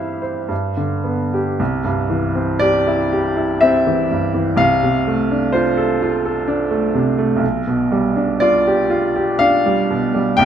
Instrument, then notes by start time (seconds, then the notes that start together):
upright piano
Already playing: G2 E3 C4 E4 G4 C5 E5 F5
0.22 C5
0.49 G2
0.77 D3
1.04 B3
1.34 G4
1.59 C2
1.84 G2
2.10 E3
2.35 C4
2.59 G4 D5
2.87 E4
3.13 G4
3.37 E4
3.61 C4 E5
3.87 E3
4.12 G2
4.35 E3
4.56 C2 F5
4.83 C3
5.07 A3
5.31 D4
5.52 F4 C5
5.77 A4
6.02 F4
6.25 A4
6.48 D4
6.71 A3
6.94 C3
7.18 A3
7.36 B1
7.67 B2
7.92 G3
8.16 D4
8.40 F4 D5
8.67 G4
8.90 F4
9.16 G4
9.39 D4 F5
9.66 G3
9.90 B2
10.15 G3
10.37 C2 G5